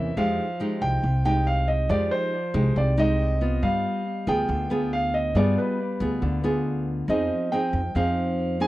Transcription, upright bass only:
Already playing: E2
0.17 F2
0.82 C2
1.03 C2
1.89 F2
2.54 C2
2.76 C2
3.63 G2
4.27 D2
4.49 D2
5.35 G2
6.00 D2
6.22 D2
7.08 F2
7.73 F2
7.95 F2

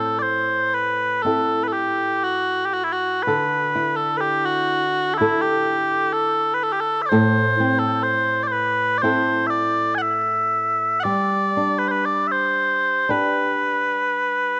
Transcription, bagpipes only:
Already playing: A4
0.19 C5 D5
0.74 B4
1.22 A4
1.63 B4
1.68 A4
1.73 G4
2.24 F#4
2.66 G4
2.73 F#4
2.84 E4
2.92 F#4
3.23 B4
3.96 A4
4.17 G4 B4
4.45 F#4
5.14 E4 A4
5.42 G4
6.13 A4
6.54 B4
6.63 A4
6.72 G4
6.81 A4
7.02 E5
7.06 C5 D5
7.79 A4
8.03 C5
8.43 D5
8.47 C5
8.52 B4
8.98 D5
9.02 C5
9.47 D5 E5
9.95 F#5 G#5
10.02 E5
11.00 D5 F#5
11.79 B4
11.88 B4 C5
12.05 D5
12.27 E5
12.32 C5
13.10 B4

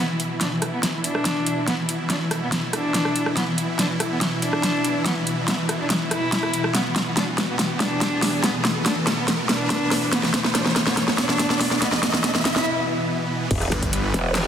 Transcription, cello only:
0.09 E3
0.20 E3
0.30 E3
0.41 D4
0.52 E3
0.62 E3
0.73 B3
0.83 E3
0.94 E3
1.04 D4
1.68 B3
1.78 E3
1.89 E3
1.99 E3
2.10 D4
2.20 E3
2.31 E3
2.42 B3
2.52 E3
2.63 E3
2.73 D4
3.37 B3
3.47 E3
3.58 E3
3.69 E3
3.79 D4
3.90 E3
4.00 E3
4.11 B3
4.21 E3
4.32 E3
4.42 D4
5.06 B3
5.16 E3
5.27 E3
5.38 E3
5.48 B3
5.59 E3
5.69 E3
5.80 D4
5.90 E3
6.01 E3
6.11 E4
6.75 B3
6.85 E3
6.96 E3
7.06 E3
7.17 D4
7.28 E3
7.38 E3
7.49 B3
7.59 E3
7.70 E3
7.80 D4
8.44 B3
8.54 E3
8.65 E3
8.76 E3
8.86 D4
8.97 E3
9.07 E3
9.18 B3
9.28 E3
9.39 E3
9.49 D4
10.13 B3
10.23 E3
10.34 E3
10.44 E3
10.55 D4
10.66 E3
10.76 E3
10.87 B3
10.97 E3
11.08 E3
11.18 D4
11.82 B3
11.93 E3
12.03 E3
12.14 E3
12.24 D4
12.35 E3
12.45 E3
12.56 E4

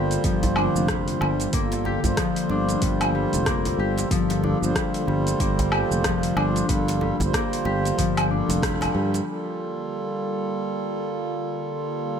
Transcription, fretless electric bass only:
Already playing: G1
0.24 G1
0.76 F1
1.21 G1
1.53 G1
2.05 G1
2.50 G1
2.82 G1
3.34 F1
3.79 G1
4.11 G1
4.62 G1
5.08 G1
5.40 G1
5.91 F1
6.36 G1
6.69 G1
7.20 G1
7.66 G1
7.98 G1
8.49 F1
8.95 G2

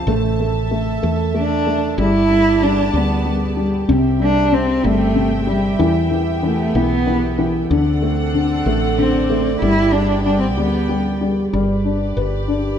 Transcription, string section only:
Already playing: C3 A5
0.07 A4 E5
1.98 B3 G4 D5 A5
3.89 C4 E5 G5
5.79 B3
7.71 C4 A4 D5 F#5
9.62 B3 G4 G5
11.53 G4 B4 D5

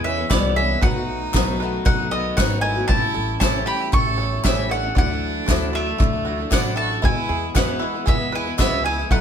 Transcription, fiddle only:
0.05 C#4
0.30 B3
0.57 C#4
0.82 D#4
1.86 D#4
2.14 B3
2.39 D#4
2.64 E4
2.89 E4
3.41 E4
3.68 G4
3.94 A4
4.46 C#4
4.72 D4
4.97 D4
5.75 A3
6.53 D4
6.79 F#4
7.04 E4
7.56 B3
8.08 B3
8.33 E4
8.59 B3
8.84 E4
9.11 D#4

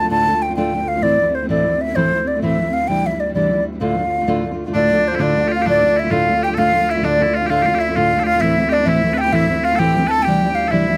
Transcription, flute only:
0.11 A5
0.42 G5
0.56 G5
0.88 F5
1.03 D5
1.35 C5
1.49 D5
1.81 E5
1.96 C5
2.27 D5
2.42 E5
2.73 F5
2.88 G5
3.06 E5
3.20 D5
3.34 D5
3.80 F5
4.75 D5
5.08 C5
5.22 D5
5.55 F5
5.69 D5
5.99 E5
6.13 F5
6.44 G5
6.58 F5
6.91 E5
7.06 D5
7.37 F5
7.50 F5
7.81 E5
7.95 F5
8.26 F5
8.40 E5
8.72 D5
8.86 E5
9.18 G5
9.33 E5
9.65 F5
9.79 G5
10.09 A5
10.22 G5
10.55 F5
10.71 E5

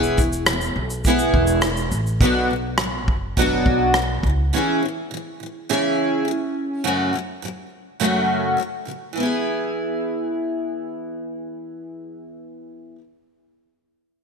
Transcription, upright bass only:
Already playing: E1
0.76 B1
1.34 E1
1.92 A1
2.21 B1
3.08 F#1
3.66 B1
4.23 C#2

